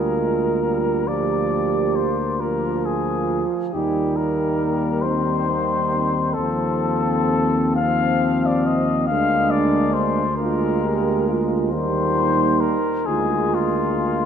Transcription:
Already playing: tuba D2, trombone G3, euphonium A#3, french horn section F4, flugelhorn A#4
0.19 trombone G#3
0.63 trombone G3
1.07 trombone F3, euphonium A#3, french horn section G4, flugelhorn D5
1.96 flugelhorn C5
2.39 trombone F3, french horn section F4, flugelhorn A#4
2.85 flugelhorn G#4
3.73 tuba D#2, trombone G3, euphonium A#3, french horn section D#4, flugelhorn G4
4.16 flugelhorn A#4
5.02 euphonium G3, french horn section C4, flugelhorn C5
5.06 trombone D#3
5.49 french horn section A#3
5.95 french horn section C4
6.33 euphonium C4, flugelhorn A4
6.38 tuba D#2, trombone F3
7.76 trombone F3, euphonium C4, flugelhorn F5
8.46 flugelhorn D5
8.66 flugelhorn D#5
9.07 tuba D2, trombone G#3, euphonium A#3, french horn section D4, flugelhorn F5
9.50 flugelhorn D5
9.94 flugelhorn C5
10.37 trombone G#3, euphonium A#3, flugelhorn A#4
10.41 french horn section F4
10.84 french horn section G4
11.28 french horn section F4
11.70 tuba D#2, trombone G3, euphonium A#3, french horn section D#4, flugelhorn C5
12.60 flugelhorn A#4
13.06 tuba D2, trombone G#3, euphonium A#3, french horn section F4, flugelhorn G#4
13.54 flugelhorn F4

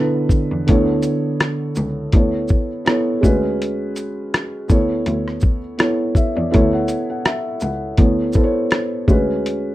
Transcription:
Already playing: cello D2, felt piano D3 B3 E4 A4 B4 C#5 D5 F#5
0.29 kick, shaker
0.52 cello E2
0.67 cello D2, felt piano D3 B3 E4 A4 C#5, kick, closed hi-hat
1.02 closed hi-hat, shaker
1.40 cross-stick, closed hi-hat
1.76 cello C#2, shaker
2.12 cello D2, felt piano B3 E4 A4 C#5, kick, closed hi-hat
2.48 kick, shaker
2.85 felt piano B3 E4 A4 C#5, cross-stick, closed hi-hat
3.21 cello D2, felt piano G#3 C#4 F#4 B4, kick, shaker
3.62 closed hi-hat
3.96 closed hi-hat, shaker
4.34 cross-stick, closed hi-hat
4.68 cello D2, felt piano B3 E4 A4 C#5, kick, shaker
5.06 cello D2, closed hi-hat
5.28 cross-stick
5.41 kick, shaker
5.78 felt piano B3 E4 A4 C#5, cross-stick, closed hi-hat
6.15 felt piano E5, kick, shaker
6.35 cello E2, felt piano D5
6.50 felt piano B3 E4 A4 C#5 E5, closed hi-hat
6.54 cello D2, kick
6.73 felt piano F#5
6.88 closed hi-hat, shaker
7.10 felt piano F#5
7.25 felt piano E5, cross-stick, closed hi-hat
7.60 cello C#2, felt piano F#5, shaker
7.97 cello D2, felt piano B3 E4 A4 C#5, kick, closed hi-hat
8.33 felt piano B3 E4 A4, kick, shaker
8.37 felt piano C5
8.43 felt piano C#5
8.71 cross-stick, closed hi-hat
9.07 cello D2, felt piano G#3 C#4 F#4 B4, kick, shaker
9.46 closed hi-hat

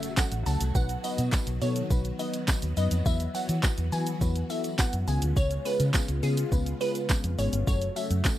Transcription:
Already playing: string machine C#3 F#3 A3 F#4, impact
0.03 closed hi-hat, tambourine, shaker
0.17 synth stab F#3 A3 C#4 F#4 A4, synth pluck F#5, kick, snare, clap, tambourine, shaker
0.32 fingered electric bass A1, closed hi-hat, shaker
0.46 fingered electric bass C#2, synth stab F#3 A3 C#4 F#4 A4, synth pluck A5, open hi-hat, tambourine, shaker
0.61 fingered electric bass C2, closed hi-hat, tambourine, shaker
0.75 fingered electric bass B1, string machine D#3 B3, synth stab F#3 B3 D#4 F#4 B4, synth pluck F#5, kick, tambourine, shaker
0.89 closed hi-hat, shaker
1.04 synth stab F#3 B3 D#4 F#4 B4, synth pluck D#5, open hi-hat, tambourine, shaker
1.18 fingered electric bass B2, closed hi-hat, tambourine, shaker
1.32 synth stab F#3 B3 D#4 F#4 B4, kick, snare, clap, tambourine, shaker
1.47 fingered electric bass B1, closed hi-hat, shaker
1.61 fingered electric bass B2, synth stab F#3 B3 D#4 F#4 A4, synth pluck C#5, open hi-hat, tambourine, shaker
1.76 closed hi-hat, shaker
1.90 fingered electric bass B1, synth stab F#3 B3 D#4 F#4 B4, kick, tambourine, shaker
2.05 closed hi-hat, shaker
2.19 synth stab F#3 B3 D#4 F#4 B4, synth pluck D#5, open hi-hat, tambourine, shaker
2.34 closed hi-hat, tambourine, shaker
2.48 synth stab F#3 B3 D#4 F#4 B4, kick, snare, clap, tambourine, shaker
2.62 fingered electric bass D#2, closed hi-hat, shaker
2.77 fingered electric bass F#2, synth stab F#3 B3 D#4 F#4 B4, synth pluck D#5, open hi-hat, tambourine, shaker
2.91 fingered electric bass F2, closed hi-hat, tambourine, shaker
3.06 fingered electric bass E2, string machine E3 F#4, synth stab F#3 B3 E4 F#4 B4, synth pluck E5, kick, tambourine, shaker
3.20 closed hi-hat, shaker
3.34 synth stab F#3 B3 E4 F#4 C#5, synth pluck F#5, open hi-hat, tambourine, shaker
3.49 fingered electric bass E3, closed hi-hat, tambourine, shaker
3.63 synth stab F#3 B3 E4 F#4 B4, kick, snare, clap, tambourine, shaker
3.78 fingered electric bass E2, closed hi-hat, shaker
3.92 fingered electric bass E3, synth stab F#3 B3 E4 F#4 B4, synth pluck G#5, open hi-hat, tambourine, shaker
4.07 closed hi-hat, shaker
4.21 fingered electric bass E2, synth stab F#3 B3 E4 F#4 B4, kick, tambourine, shaker
4.36 closed hi-hat, shaker
4.50 synth stab F#3 B3 E4 F#4 A4, synth pluck E5, open hi-hat, tambourine, shaker
4.64 closed hi-hat, tambourine, shaker
4.78 synth stab F#3 B3 E4 F#4 B4, synth pluck F#5, kick, snare, clap, tambourine, shaker
4.93 fingered electric bass F#2, closed hi-hat, shaker
5.07 fingered electric bass C#2, string machine C#3 G#3 B3 F4, synth stab G#3 B3 C#4 F4 G#4, synth pluck G#5, open hi-hat, tambourine, shaker
5.22 fingered electric bass D2, closed hi-hat, shaker
5.36 fingered electric bass C#2, synth pluck C#5, kick, tambourine, shaker
5.51 closed hi-hat, shaker
5.65 synth stab G#3 B3 C#4 F4 G#4, synth pluck B4, open hi-hat, tambourine, shaker
5.80 fingered electric bass C#3, closed hi-hat, tambourine, shaker
5.93 synth stab G#3 B3 C#4 F4 G#4, kick, snare, clap, tambourine, shaker
6.08 fingered electric bass C#2, closed hi-hat, shaker
6.23 fingered electric bass C#3, synth stab G#3 B3 C#4 F4 G#4, synth pluck G#4, open hi-hat, tambourine, shaker
6.37 closed hi-hat, shaker
6.52 fingered electric bass C#2, synth stab G#3 B3 C#4 F4 B4, kick, tambourine, shaker
6.66 closed hi-hat, shaker
6.80 synth stab G#3 B3 C#4 F4 G#4, synth pluck B4, open hi-hat, tambourine, shaker
6.95 closed hi-hat, tambourine, shaker
7.09 synth stab G#3 B3 C#4 F4 G#4, kick, snare, clap, tambourine, shaker
7.24 fingered electric bass F2, closed hi-hat, shaker
7.38 fingered electric bass G#1, synth stab G#3 B3 C#4 F4 G#4, synth pluck C#5, open hi-hat, tambourine, shaker
7.53 fingered electric bass G1, closed hi-hat, shaker
7.67 fingered electric bass F#1, string machine C#3 F#3 A3 F#4, synth stab F#3 A3 C#4 F#4 A4, synth pluck C#5, kick, tambourine, shaker
7.82 closed hi-hat, shaker
7.96 synth stab F#3 A3 C#4 F#4 A4, synth pluck E5, open hi-hat, tambourine, shaker
8.10 fingered electric bass F#2, closed hi-hat, shaker
8.24 synth stab F#3 A3 C#4 F#4 A4, kick, snare, clap, tambourine, shaker

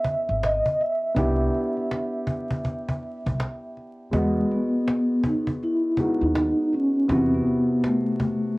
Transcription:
Already playing: grand piano B3 C#4 E4 G#4, vibraphone E5
0.04 cajon bass
0.29 upright bass G#1, cajon slap
0.43 vibraphone D#5, cajon slap
0.66 cajon bass
0.80 vibraphone E5, cajon slap
1.15 upright bass C2, grand piano B3 D4 E4 G4, cajon bass
1.55 cajon slap
1.77 cajon slap
1.91 cajon slap
2.27 cajon bass
2.51 cajon bass
2.65 cajon bass, cajon slap
2.89 cajon bass
3.03 cajon slap
3.26 upright bass C2, cajon bass, cajon slap
3.40 cajon slap
3.77 cajon slap
4.11 upright bass E2, grand piano G#3 B3 F#4 D#5, vibraphone G#3, cajon bass
4.51 vibraphone B3, cajon slap
4.88 cajon slap
5.23 vibraphone D#4, cajon bass
5.47 cajon bass
5.63 vibraphone E4, cajon slap
5.97 grand piano G#3 B3 D#4 F#4, cajon bass
6.21 upright bass D#2, vibraphone D#4
6.35 cajon slap
6.73 vibraphone C#4, cajon slap
7.08 upright bass E2, grand piano C3 B3 E4 F#4, vibraphone C4, cajon bass
7.34 vibraphone B3
7.47 cajon slap
7.80 vibraphone B3, cajon slap
7.86 vibraphone A3
8.20 cajon bass

